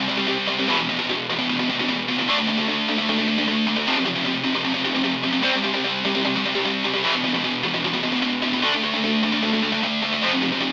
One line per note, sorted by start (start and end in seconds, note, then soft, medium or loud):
0.09 0.17 C3 medium
0.09 0.17 G3 medium
0.18 0.27 C3 medium
0.18 0.28 G3 medium
0.28 0.46 C3 medium
0.28 0.46 G3 medium
0.48 0.58 C3 medium
0.48 0.57 G3 medium
0.59 0.68 C3 medium
0.59 0.69 G3 medium
0.68 0.77 E2 loud
0.68 0.77 B2 medium
0.68 0.78 E3 loud
0.78 0.88 E2 medium
0.78 0.88 B2 medium
0.89 0.98 E2 medium
0.89 0.98 B2 medium
0.99 1.08 E2 medium
0.99 1.09 B2 medium
1.09 1.27 E2 medium
1.09 1.27 B2 medium
1.30 1.38 E2 medium
1.30 1.38 B2 medium
1.39 1.48 E2 medium
1.39 1.48 B2 loud
1.49 1.58 E2 medium
1.49 1.58 B2 loud
1.59 1.69 E2 medium
1.59 1.68 B2 medium
1.69 1.79 E2 medium
1.69 1.78 B2 medium
1.80 1.87 E2 medium
1.80 1.88 B2 medium
1.89 2.06 E2 medium
1.89 2.07 B2 medium
2.08 2.18 E2 medium
2.08 2.17 B2 medium
2.19 2.29 E2 medium
2.19 2.28 B2 medium
2.28 2.37 D3 medium
2.28 2.37 A3 loud
2.28 2.37 D4 loud
2.38 2.47 D3 medium
2.38 2.46 A3 medium
2.47 2.57 D3 medium
2.47 2.57 A3 medium
2.58 2.67 D3 medium
2.58 2.67 A3 medium
2.68 2.86 D3 medium
2.68 2.86 A3 medium
2.88 2.98 D3 medium
2.88 2.97 A3 medium
2.98 3.08 D3 medium
2.98 3.08 A3 medium
3.09 3.18 D3 medium
3.09 3.17 A3 medium
3.18 3.27 D3 medium
3.18 3.27 A3 medium
3.28 3.37 D3 medium
3.28 3.37 A3 medium
3.38 3.47 D3 medium
3.38 3.47 A3 medium
3.48 3.66 D3 medium
3.48 3.66 A3 loud
3.67 3.76 D3 medium
3.67 3.75 A3 loud
3.77 3.87 D3 medium
3.77 3.87 A3 medium
3.87 3.96 F2 medium
3.87 3.96 C3 loud
3.87 3.96 F3 loud
3.97 4.06 F2 medium
3.97 4.05 C3 medium
4.06 4.15 F2 medium
4.06 4.15 C3 medium
4.16 4.24 F2 medium
4.16 4.25 C3 medium
4.25 4.43 F2 medium
4.25 4.43 C3 loud
4.44 4.54 F2 medium
4.44 4.53 C3 medium
4.55 4.64 F2 medium
4.55 4.64 C3 medium
4.65 4.74 F2 medium
4.65 4.73 C3 medium
4.74 4.84 F2 medium
4.74 4.83 C3 medium
4.85 4.95 F2 medium
4.85 4.94 C3 medium
4.95 5.03 F2 medium
4.95 5.03 C3 medium
5.04 5.23 F2 medium
5.04 5.23 C3 loud
5.24 5.33 F2 medium
5.24 5.32 C3 medium
5.33 5.45 F2 medium
5.33 5.41 C3 medium
5.43 5.53 C3 medium
5.43 5.52 G3 loud
5.43 5.54 C4 medium
5.54 5.63 C3 medium
5.54 5.63 G3 medium
5.64 5.73 C3 medium
5.64 5.73 G3 medium
5.74 5.83 C3 medium
5.74 5.83 G3 medium
5.84 6.03 C3 medium
5.84 6.03 G3 loud
6.05 6.14 C3 medium
6.05 6.14 G3 medium
6.15 6.24 C3 medium
6.15 6.24 G3 medium
6.25 6.35 C3 medium
6.25 6.35 G3 medium
6.36 6.44 C3 medium
6.36 6.45 G3 loud
6.46 6.55 C3 medium
6.46 6.54 G3 medium
6.55 6.64 C3 medium
6.55 6.65 G3 medium
6.65 6.83 C3 medium
6.65 6.83 G3 loud
6.85 6.94 C3 medium
6.85 6.93 G3 medium
6.94 7.04 C3 medium
6.94 7.05 G3 medium
7.04 7.13 E2 medium
7.04 7.13 B2 loud
7.04 7.14 E3 loud
7.14 7.23 E2 medium
7.14 7.23 B2 loud
7.24 7.34 E2 medium
7.24 7.33 B2 medium
7.34 7.43 E2 medium
7.34 7.43 B2 medium
7.44 7.63 E2 medium
7.44 7.62 B2 medium
7.63 7.73 E2 medium
7.63 7.73 B2 medium
7.74 7.83 E2 medium
7.74 7.83 B2 medium
7.84 7.92 E2 medium
7.84 7.92 B2 loud
7.93 8.02 E2 medium
7.93 8.02 B2 medium
8.03 8.11 E2 medium
8.03 8.11 B2 loud
8.12 8.21 E2 medium
8.12 8.22 B2 medium
8.22 8.42 E2 medium
8.22 8.41 B2 medium
8.42 8.52 E2 medium
8.42 8.52 B2 medium
8.53 8.64 E2 medium
8.53 8.62 B2 medium
8.62 8.72 D3 loud
8.62 8.72 A3 medium
8.62 8.73 D4 loud
8.73 8.82 D3 medium
8.73 8.82 A3 medium
8.83 8.92 D3 medium
8.83 8.93 A3 medium
8.94 9.03 D3 medium
8.94 9.03 A3 medium
9.04 9.22 D3 medium
9.04 9.22 A3 medium
9.23 9.31 D3 medium
9.23 9.31 A3 medium
9.33 9.41 D3 medium
9.33 9.42 A3 medium
9.42 9.52 D3 loud
9.42 9.52 A3 loud
9.53 9.62 D3 medium
9.53 9.61 A3 medium
9.63 9.72 D3 medium
9.63 9.71 A3 medium
9.72 9.82 D3 medium
9.72 9.82 A3 medium
9.83 10.02 D3 medium
9.83 10.01 A3 loud
10.03 10.12 D3 medium
10.03 10.11 A3 loud
10.13 10.23 D3 medium
10.13 10.23 A3 medium
10.22 10.31 F2 medium
10.22 10.31 C3 loud
10.22 10.33 F3 loud
10.33 10.41 F2 medium
10.33 10.41 C3 medium
10.42 10.51 F2 medium
10.42 10.51 C3 medium
10.52 10.60 F2 medium
10.52 10.60 C3 medium
10.61 10.72 F2 medium
10.61 10.72 C3 loud